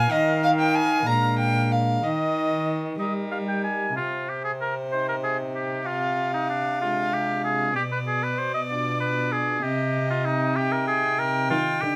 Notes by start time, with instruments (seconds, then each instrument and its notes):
Already playing: oboe F5, violin G#5
0.11 cello D#3, pipe organ D#3 D#4 A#4, violin D#5
0.43 violin F5
0.60 violin G5
0.75 violin G#5
1.06 pipe organ A#2 G#3 D4 A#4, cello A#2, violin A#5
1.39 violin G5
1.71 violin F5
2.03 cello D#3, pipe organ D#3, violin D#5, oboe D#5
2.99 cello G3, pipe organ G3 D#4 A#4, oboe D#5
3.31 oboe F5
3.48 oboe G5
3.64 oboe G#5
3.96 cello C3, pipe organ C3, oboe F4, violin C5
4.29 oboe G4
4.44 oboe G#4
4.61 oboe A#4
4.92 pipe organ D#4, oboe C5
5.09 oboe A#4
5.23 oboe G#4
5.55 oboe G4
5.86 oboe F4, violin F5
6.34 oboe D#4
6.49 oboe D4
6.81 pipe organ G#3 D4 F4, oboe F4
7.13 oboe G4
7.44 oboe G#4
7.75 cello B2, pipe organ B2, oboe G4, violin D5
7.92 oboe B4
8.07 oboe G#4
8.23 oboe B4
8.39 oboe C5
8.54 oboe D#5
8.69 pipe organ D4 F4, oboe D5
9.00 oboe B4
9.32 oboe G#4
9.63 cello C3, pipe organ C3, oboe G4, violin D#5
10.10 oboe F4
10.25 oboe D#4
10.56 pipe organ D#4, oboe G4, violin G5
10.72 oboe A#4
10.88 oboe G#4
11.19 oboe A#4
11.50 cello D#3, pipe organ D#3 D#4, oboe F4
11.81 pipe organ D3, cello D3, oboe G4